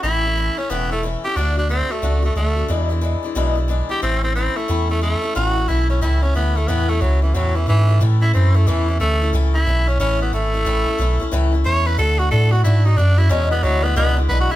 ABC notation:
X:1
M:4/4
L:1/8
Q:"Swing" 1/4=181
K:A
V:1 name="Steel-string acoustic guitar"
[A,,E,A,CE] [A,CE] [E,A,CE] [A,CE] [A,,E,A,CE] [A,CE] [E,A,CE] [A,CE] | [D,A,DF] [A,DF] [D,A,DF] [A,DF] [D,A,DF] [A,DF] [D,A,DF] [A,DF] | [E,,B,,E,G,DE] [E,G,DE] [E,G,DE] [E,G,DE] [E,,B,,E,G,DE] [E,G,DE] [E,G,DE] [E,G,DE] | [A,,E,A,CE] [A,CE] [E,A,CE] [A,CE] [A,,E,A,CE] [A,CE] [E,A,CE] [A,CE] |
[A,,E,A,CE] [A,CE] [E,A,CE] [A,CE] [A,,E,A,CE] [A,CE] [E,A,CE] [A,CE] | [A,,E,A,CE] [A,CE] [E,A,CE] [A,CE] [A,,E,A,CE] [A,CE] [E,A,CE] [A,CE] | [A,,E,A,CE] [A,CE] [E,A,CE] [A,CE] [A,,E,A,CE] [A,CE] [E,A,CE] [A,CE] | [A,,E,A,CE] [A,CE] [E,A,CE] [A,CE] [A,,E,A,CE] [A,CE] [E,A,CE] [A,CE] |
[A,,E,A,CE] [A,CE] [E,A,CE] [A,CE] [A,,E,A,CE] [A,CE] [E,A,CE] [A,CE] | [D,A,DF] [A,DF] [D,A,DF] [A,DF] [D,A,DF] [A,DF] [D,A,DF] [A,DF] | [E,,B,,E,G,DE] [E,G,DE] [E,G,DE] [E,G,DE] [E,,B,,E,G,DE] [E,G,DE] [E,G,DE] [G,DE] |]
V:2 name="Tenor saxophone"
E3 C B, A, z =G | D D =C A,2 A, A,2 | z6 z =G | =C C C A,2 A, A,2 |
F2 E C E C B, A, | B, A, F, E, F, E, E,2 | z E =C A, E,2 A,2 | z E2 C C B, A,2- |
A,4 z2 c B | A F A F E ^D =D E | C B, F, B, B, z (3B F E |]
V:3 name="Sub bass" clef=bass
A,,,4 E,,,4 | D,,4 C,,2 D,,2 | E,,4 B,,,4 | A,,,4 E,,4 |
A,,,2 B,,,2 C,,2 D,,2 | E,,2 C,,2 E,,2 G,,2 | A,,2 F,,2 E,,2 D,,2 | C,,2 B,,,2 A,,,2 G,,,2 |
A,,, A,,, B,,, B,,, C,,2 E,,2 | D,,2 A,,2 G,,2 F,,2 | E,,2 D,,2 C,,2 B,,, B,,, |]